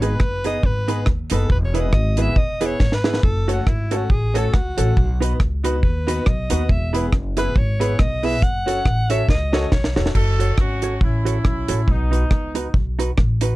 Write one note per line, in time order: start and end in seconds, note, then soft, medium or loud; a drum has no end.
0.00 0.14 G#1 loud
0.00 0.15 B3 medium
0.00 0.16 D#4 medium
0.00 0.13 D#4 medium
0.00 0.16 G#4 medium
0.00 0.13 G#4 loud
0.00 0.16 B4 medium
0.00 0.13 B4 loud
0.00 0.46 B4 loud
0.00 closed hi-hat medium
0.20 0.57 F#1 medium
0.20 kick loud
0.20 cross-stick loud
0.44 0.59 B3 medium
0.44 0.56 D#4 medium
0.44 0.59 D#4 medium
0.44 0.59 G#4 medium
0.44 0.56 G#4 medium
0.44 0.59 B4 medium
0.44 0.57 B4 medium
0.44 0.67 D#5 loud
0.44 closed hi-hat medium
0.63 1.00 G#1 medium
0.63 1.08 B4 medium
0.63 muted hollow-body jazz guitar stroke medium
0.63 kick loud
0.88 1.02 B3 medium
0.88 1.02 D#4 medium
0.88 0.99 D#4 medium
0.88 1.02 G#4 medium
0.88 1.00 G#4 medium
0.88 1.03 B4 loud
0.88 1.00 B4 medium
0.88 closed hi-hat medium
1.06 1.28 D#2 medium
1.06 muted hollow-body jazz guitar stroke soft
1.06 kick loud
1.06 cross-stick loud
1.30 1.47 F#1 loud
1.30 1.45 B3 medium
1.30 1.45 D#4 medium
1.30 1.43 D#4 medium
1.30 1.46 G#4 medium
1.30 1.43 G#4 loud
1.30 1.50 A4 medium
1.30 1.46 B4 medium
1.30 1.43 B4 loud
1.30 closed hi-hat loud
1.50 1.93 E1 loud
1.50 1.58 B4 medium
1.50 kick loud
1.65 1.82 C#5 medium
1.74 1.88 B3 medium
1.74 1.86 E4 medium
1.74 1.89 E4 medium
1.74 1.89 G#4 medium
1.74 1.86 G#4 medium
1.74 1.86 B4 loud
1.74 1.89 B4 loud
1.74 closed hi-hat medium
1.81 1.93 D#5 medium
1.93 2.30 G#1 medium
1.93 2.23 D#5 loud
1.93 kick loud
1.93 cross-stick loud
2.17 2.32 B3 medium
2.17 2.29 E4 medium
2.17 2.32 E4 medium
2.17 2.29 G#4 medium
2.17 2.32 G#4 medium
2.17 2.32 B4 loud
2.17 2.30 B4 medium
2.17 closed hi-hat medium
2.22 2.39 E5 loud
2.36 2.73 E1 medium
2.36 2.68 D#5 loud
2.36 muted hollow-body jazz guitar stroke soft
2.36 kick loud
2.60 2.75 B3 medium
2.60 2.72 E4 medium
2.60 2.75 E4 medium
2.60 2.75 G#4 medium
2.60 2.73 G#4 medium
2.60 2.76 B4 loud
2.60 2.73 B4 medium
2.60 closed hi-hat medium
2.66 2.96 C#5 medium
2.80 3.17 G#1 medium
2.80 muted hollow-body jazz guitar stroke soft
2.80 kick loud
2.80 snare medium
2.92 3.23 B4 medium
2.92 snare medium
3.04 3.18 B3 medium
3.04 3.16 E4 medium
3.04 3.19 E4 medium
3.04 3.19 G#4 medium
3.04 3.16 G#4 medium
3.04 3.19 B4 medium
3.04 3.16 B4 medium
3.04 snare loud
3.14 snare medium
3.23 3.60 F#1 loud
3.23 3.51 A4 medium
3.23 kick loud
3.47 3.62 A3 medium
3.47 3.62 C#4 medium
3.47 3.62 F#4 medium
3.47 3.59 F#4 medium
3.47 3.59 A4 loud
3.47 3.62 A4 loud
3.47 3.60 C#5 medium
3.47 closed hi-hat medium
3.53 3.69 F#4 medium
3.67 4.04 G#1 medium
3.67 3.98 E4 medium
3.67 kick loud
3.67 cross-stick loud
3.91 4.05 A3 medium
3.91 4.05 C#4 medium
3.91 4.02 F#4 medium
3.91 4.06 F#4 medium
3.91 4.03 A4 medium
3.91 4.06 A4 loud
3.91 4.03 C#5 medium
3.91 closed hi-hat medium
3.97 4.13 F#4 medium
4.10 4.47 A1 medium
4.10 4.41 G#4 medium
4.10 muted hollow-body jazz guitar stroke soft
4.10 kick loud
4.34 4.48 A3 medium
4.34 4.48 C#4 medium
4.34 4.48 F#4 medium
4.34 4.46 F#4 medium
4.34 4.49 A4 loud
4.34 4.46 A4 loud
4.34 4.46 C#5 medium
4.34 closed hi-hat medium
4.39 4.55 A4 medium
4.53 4.74 C#2 medium
4.53 5.21 F#4 medium
4.53 muted hollow-body jazz guitar stroke medium
4.53 kick loud
4.53 cross-stick loud
4.77 4.94 A1 medium
4.77 4.92 A3 medium
4.77 4.92 C#4 medium
4.77 4.89 F#4 medium
4.77 4.92 F#4 medium
4.77 4.89 A4 medium
4.77 4.92 A4 loud
4.77 4.89 C#5 medium
4.77 closed hi-hat loud
4.97 5.34 B1 loud
4.97 kick loud
5.20 5.35 B3 medium
5.20 5.32 D#4 medium
5.20 5.35 D#4 medium
5.20 5.35 F#4 medium
5.20 5.32 F#4 medium
5.20 5.35 B4 loud
5.20 5.32 B4 medium
5.20 closed hi-hat medium
5.40 5.83 C#2 medium
5.40 kick loud
5.40 cross-stick loud
5.63 5.78 B3 medium
5.63 5.78 D#4 medium
5.63 5.75 D#4 medium
5.63 5.78 F#4 medium
5.63 5.75 F#4 medium
5.63 5.78 B4 loud
5.63 5.76 B4 loud
5.63 closed hi-hat medium
5.82 6.20 D#2 medium
5.82 6.29 B4 medium
5.82 muted hollow-body jazz guitar stroke soft
5.82 kick loud
6.07 6.21 B3 loud
6.07 6.21 D#4 medium
6.07 6.18 D#4 medium
6.07 6.22 F#4 medium
6.07 6.19 F#4 loud
6.07 6.22 B4 loud
6.07 6.19 B4 medium
6.07 closed hi-hat loud
6.26 6.47 B1 medium
6.26 6.73 D#5 loud
6.26 kick loud
6.26 cross-stick loud
6.50 6.67 D#2 medium
6.50 6.64 B3 medium
6.50 6.61 D#4 medium
6.50 6.65 D#4 medium
6.50 6.62 F#4 medium
6.50 6.65 F#4 medium
6.50 6.62 B4 medium
6.50 6.65 B4 medium
6.50 closed hi-hat loud
6.69 7.13 E1 loud
6.69 6.95 E5 medium
6.69 kick loud
6.93 7.08 B3 medium
6.93 7.04 E4 medium
6.93 7.08 E4 medium
6.93 7.05 G#4 medium
6.93 7.08 G#4 medium
6.93 7.05 B4 medium
6.93 7.08 B4 loud
6.93 closed hi-hat medium
7.12 7.49 F#1 loud
7.12 kick loud
7.12 cross-stick loud
7.37 7.51 B3 medium
7.37 7.48 E4 medium
7.37 7.51 E4 medium
7.37 7.48 G#4 medium
7.37 7.51 G#4 medium
7.37 7.51 B4 loud
7.37 7.49 B4 medium
7.37 7.60 B4 loud
7.37 closed hi-hat medium
7.56 7.92 G#1 loud
7.56 8.02 C#5 medium
7.56 muted hollow-body jazz guitar stroke soft
7.56 kick loud
7.79 7.94 B3 medium
7.79 7.94 E4 medium
7.79 7.91 E4 medium
7.79 7.94 G#4 medium
7.79 7.92 G#4 medium
7.79 7.94 B4 loud
7.79 7.92 B4 loud
7.79 closed hi-hat medium
7.99 8.42 B1 loud
7.99 8.26 D#5 loud
7.99 muted hollow-body jazz guitar stroke soft
7.99 kick loud
7.99 cross-stick loud
8.23 8.37 B3 medium
8.23 8.37 E4 medium
8.23 8.34 E4 medium
8.23 8.38 G#4 medium
8.23 8.35 G#4 medium
8.23 8.38 B4 medium
8.23 8.35 B4 medium
8.23 8.45 E5 loud
8.23 open hi-hat medium
8.42 8.79 F#1 loud
8.42 9.12 F#5 loud
8.42 kick loud
8.42 hi-hat pedal medium
8.66 8.80 C#4 medium
8.66 8.81 F#4 medium
8.66 8.78 F#4 medium
8.66 8.81 A4 medium
8.66 8.78 A4 medium
8.66 8.81 C#5 medium
8.66 8.78 C#5 medium
8.66 closed hi-hat medium
8.85 9.22 A1 medium
8.85 kick loud
8.85 cross-stick loud
9.09 9.24 C#4 loud
9.09 9.24 F#4 medium
9.09 9.21 F#4 medium
9.09 9.24 A4 medium
9.09 9.21 A4 loud
9.09 9.24 C#5 loud
9.09 9.22 C#5 loud
9.09 9.29 E5 loud
9.09 closed hi-hat medium
9.29 9.65 C#2 medium
9.29 9.69 D#5 medium
9.29 muted hollow-body jazz guitar stroke soft
9.29 kick loud
9.29 snare medium
9.52 9.67 C#4 medium
9.52 9.67 F#4 medium
9.52 9.64 F#4 medium
9.52 9.67 A4 medium
9.52 9.64 A4 loud
9.52 9.67 C#5 loud
9.52 9.65 C#5 medium
9.52 snare medium
9.72 9.93 B1 medium
9.72 9.95 C#5 medium
9.72 muted hollow-body jazz guitar stroke soft
9.72 kick loud
9.72 snare medium
9.84 snare medium
9.96 10.12 E1 loud
9.96 10.10 C#4 medium
9.96 10.07 F#4 medium
9.96 10.10 F#4 medium
9.96 10.10 A4 medium
9.96 10.07 A4 medium
9.96 10.08 C#5 loud
9.96 10.11 C#5 loud
9.96 snare loud
10.06 snare loud
10.15 10.52 F#1 loud
10.15 10.56 F#4 medium
10.15 10.56 A4 loud
10.15 kick loud
10.15 crash medium
10.39 10.50 F#4 medium
10.39 10.51 A4 medium
10.39 10.51 C#5 medium
10.39 closed hi-hat medium
10.58 10.95 G#1 medium
10.58 10.99 C#4 medium
10.58 10.99 F#4 medium
10.58 kick loud
10.58 cross-stick loud
10.82 10.94 F#4 medium
10.82 10.94 A4 medium
10.82 10.94 C#5 medium
10.82 closed hi-hat medium
11.01 11.38 A1 medium
11.01 11.89 C#4 medium
11.01 11.89 E4 medium
11.01 muted hollow-body jazz guitar stroke soft
11.01 kick loud
11.25 11.37 F#4 medium
11.25 11.37 A4 medium
11.25 11.37 C#5 medium
11.25 closed hi-hat medium
11.44 11.66 B1 loud
11.44 muted hollow-body jazz guitar stroke soft
11.44 kick loud
11.44 cross-stick loud
11.68 11.85 A1 medium
11.68 11.80 F#4 medium
11.68 11.80 A4 medium
11.68 11.80 C#5 medium
11.68 closed hi-hat loud
11.88 12.25 B1 loud
11.88 12.75 B3 medium
11.88 12.76 D#4 medium
11.88 kick loud
12.11 12.23 D#4 medium
12.11 12.23 F#4 medium
12.11 12.23 B4 medium
12.11 closed hi-hat medium
12.31 12.68 C#2 medium
12.31 kick loud
12.31 cross-stick loud
12.55 12.66 D#4 medium
12.55 12.67 F#4 medium
12.55 12.67 B4 medium
12.55 closed hi-hat medium
12.74 13.11 B1 medium
12.74 muted hollow-body jazz guitar stroke soft
12.74 kick loud
12.99 13.10 D#4 medium
12.99 13.10 F#4 loud
12.99 13.10 B4 medium
12.99 closed hi-hat medium
13.17 13.55 A1 medium
13.17 muted hollow-body jazz guitar stroke soft
13.17 kick loud
13.17 cross-stick loud
13.41 13.53 D#4 medium
13.41 13.53 F#4 medium
13.41 13.53 B4 medium
13.41 closed hi-hat loud